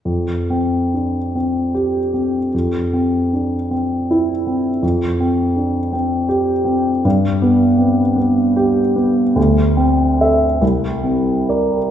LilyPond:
\new Staff \with { instrumentName = "Grand piano" } { \time 6/8 \key d \dorian \tempo 4. = 51 << { r2 g'4 | r2 e'4 | r2 g'4 | r2 g'4 |
r4 e''8 r4 d''8 | } \\ { f,8 c'8 d'8 c'4 c'8 | f,8 c'8 d'8 c'4 c'8 | f,8 c'8 d'8 c'4 c'8 | g,8 b8 c'8 b4 b8 |
d,8 c'8 a'8 c,8 c'8 bes'8 | } >> }